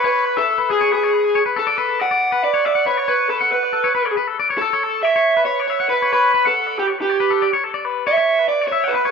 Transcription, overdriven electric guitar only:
\new Staff \with { instrumentName = "Overdriven electric guitar" } { \time 7/8 \key b \dorian \tempo 4 = 138 b'8. a'8. gis'8 gis'4 r8 | a'4 fis''4 d''8 d''8 cis''8 | b'8 a'8 b'4. r4 | a'4 e''4 cis''8 cis''8 b'8 |
b'8. a'8. g'8 g'4 r8 | r4 e''4 d''8 cis''8 b'8 | }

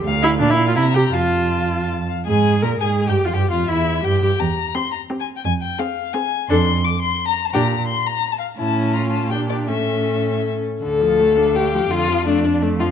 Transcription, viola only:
\new Staff \with { instrumentName = "Viola" } { \time 3/4 \key f \major \tempo 4 = 169 r8 e'8 d'16 e'8 f'16 e'8 g'8 | f'2 r4 | \key f \minor aes'4 bes'8 aes'8. g'8 f'16 | g'8 f'8 e'4 g'8 g'8 |
r4 c'4 c'4 | r4 c'4 c'4 | \key d \minor d'8 r2 r8 | d'8 r2 r8 |
cis'2 d'4 | cis'2~ cis'8 r8 | d8 f8 a8 d'8 a8 f8 | d8 f8 a8 d'8 a8 f8 | }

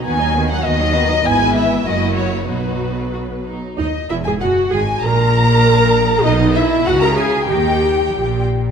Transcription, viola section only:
\new Staff \with { instrumentName = "Viola section" } { \time 2/4 \key b \major \tempo 4 = 97 <dis b>16 <fis dis'>16 <dis b>16 <fis dis'>16 <dis b>16 <fis dis'>16 <dis b>16 <fis dis'>16 | <e b>4 <fis ais>4 | <fis b>4.~ <fis b>16 r16 | \key gis \minor dis'8 e'16 gis'16 fis'8 gis'8 |
ais'2 | dis'8 e'8 fis'16 ais'16 gis'8 | g'4. r8 | }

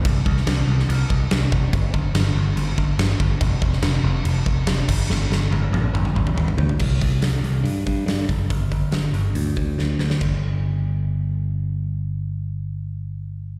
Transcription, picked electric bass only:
\new Staff \with { instrumentName = "Picked electric bass" } { \clef bass \time 4/4 \key c \minor \tempo 4 = 142 c,8 c,8 c,8 c,8 c,8 c,8 c,8 f,,8 | g,,8 g,,8 g,,8 g,,8 g,,8 g,,8 g,,8 g,,8 | f,,8 f,,8 f,,8 f,,8 f,,8 f,,8 f,,8 g,,8 | g,,8 g,,8 g,,8 bes,,8 aes,,8 aes,,8 aes,,8 d,8 |
c,8 c,8 c,8 c,8 g,8 g,8 g,8 fis,,8 | g,,8 g,,8 g,,8 g,,8 d,8 d,8 d,8 d,8 | g,,1~ | g,,1 | }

